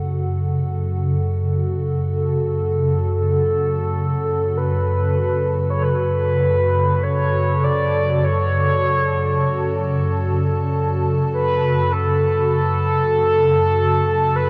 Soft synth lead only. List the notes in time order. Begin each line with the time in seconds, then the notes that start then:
2.15 A4
4.57 B4
5.70 C#5
5.83 B4
7.03 C#5
7.64 D5
8.24 C#5
11.33 B4
11.92 A4
14.36 B4